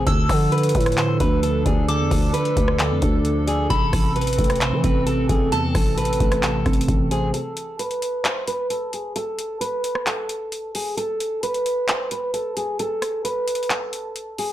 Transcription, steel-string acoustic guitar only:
0.06 0.49 A4 loud
0.52 0.95 B4 medium
0.98 1.19 C5 medium
1.20 1.42 B4 medium
1.43 1.64 A4 medium
1.66 1.87 G#4 medium
1.88 2.31 A4 loud
2.34 2.76 B4 medium
2.79 3.43 A4 medium
3.48 3.69 G#4 medium
3.70 4.13 A4 loud
4.16 4.58 B4 medium
4.62 4.83 C5 medium
4.84 5.06 B4 medium
5.06 5.28 A4 medium
5.30 5.51 G#4 medium
5.52 5.95 A4 loud
5.97 6.40 B4 medium
6.43 7.07 A4 medium
7.11 7.33 G#4 medium
7.34 7.77 A4 loud
7.79 8.22 B4 medium
8.25 8.46 C5 medium
8.48 8.69 B4 medium
8.70 8.92 A4 medium
8.94 9.15 G#4 medium
9.16 9.58 A4 loud
9.61 10.04 B4 medium
10.06 10.71 A4 medium
10.75 10.96 G#4 medium
10.97 11.40 A4 loud
11.43 11.86 B4 medium
11.89 12.10 C5 medium
12.12 12.33 B4 medium
12.34 12.55 A4 medium
12.57 12.78 G#4 medium
12.80 13.22 A4 loud
13.25 13.67 B4 medium
13.70 14.34 A4 medium
14.39 14.53 G#4 medium

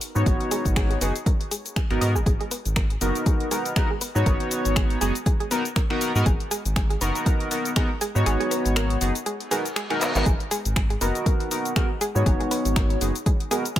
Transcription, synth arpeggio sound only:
0.26 0.30 G#4 medium
0.51 0.57 G#4 loud
0.76 0.82 G#4 loud
0.90 0.97 G#4 medium
1.01 1.07 B4 medium
1.26 1.30 A#4 medium
1.51 1.57 G#4 medium
1.76 1.82 G#4 medium
2.01 2.10 D#5 loud
2.15 2.20 G#4 loud
2.26 2.32 G#4 loud
2.41 2.47 G#4 medium
2.51 2.57 B4 medium
2.76 2.80 A#4 medium
3.26 3.30 G#4 medium
3.51 3.57 G#4 loud
3.76 3.82 G#4 loud
3.90 3.97 G#4 medium
4.01 4.07 B4 medium
4.26 4.30 A#4 medium
4.76 4.80 G#4 medium
5.01 5.07 G#4 loud
5.26 5.32 G#4 loud
5.40 5.47 G#4 medium
5.51 5.57 B4 medium
5.76 5.80 A#4 medium
6.26 6.30 G#4 medium
6.51 6.57 G#4 loud
6.76 6.82 G#4 loud
6.90 6.97 G#4 medium
7.01 7.07 B4 medium
7.26 7.30 A#4 medium
7.76 7.80 G#4 medium
8.01 8.07 G#4 loud
8.26 8.32 G#4 loud
8.40 8.47 G#4 medium
8.51 8.57 B4 medium
8.76 8.80 A#4 medium
9.26 9.30 G#4 medium
9.51 9.57 G#4 loud
9.76 9.82 G#4 loud
9.90 9.97 G#4 medium
10.01 10.07 B4 medium
10.26 10.30 G#4 medium
10.51 10.57 G#4 loud
10.76 10.82 G#4 loud
10.90 10.97 G#4 medium
11.01 11.07 B4 medium
11.26 11.30 A#4 medium
11.76 11.80 G#4 medium
12.01 12.07 G#4 loud
12.26 12.32 G#4 loud
12.40 12.47 G#4 medium
12.51 12.57 B4 medium
12.76 12.80 A#4 medium
13.26 13.30 G#4 medium
13.51 13.57 G#4 loud
13.76 13.80 G#4 loud

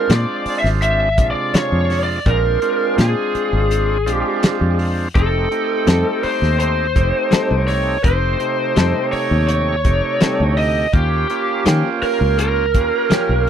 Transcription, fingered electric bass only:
0.10 0.25 A#2 medium
0.46 muted fingered electric bass stroke soft
0.64 1.18 G#1 medium
1.18 1.33 A#1 medium
1.54 muted fingered electric bass stroke soft
1.72 2.17 F2 medium
2.26 2.56 A#1 loud
2.98 3.14 A#2 loud
3.35 muted fingered electric bass stroke soft
3.53 4.07 G#1 medium
4.07 4.22 A#1 medium
4.43 muted fingered electric bass stroke soft
4.61 5.06 F2 medium
5.16 5.45 F1 loud
5.87 6.03 F2 medium
6.24 muted fingered electric bass stroke soft
6.42 6.97 D#2 medium
6.96 7.11 F1 medium
7.33 muted fingered electric bass stroke soft
7.51 7.96 C2 medium
8.04 8.34 F1 loud
8.77 8.92 F2 medium
9.13 muted fingered electric bass stroke soft
9.31 9.86 D#2 medium
9.85 10.00 F1 medium
10.22 muted fingered electric bass stroke soft
10.40 10.85 D2 medium
10.94 11.24 D#2 medium
11.66 11.81 D#3 medium
12.02 muted fingered electric bass stroke soft
12.21 12.75 C#2 medium
12.75 12.90 D#2 medium
13.11 muted fingered electric bass stroke soft
13.29 13.50 B1 medium

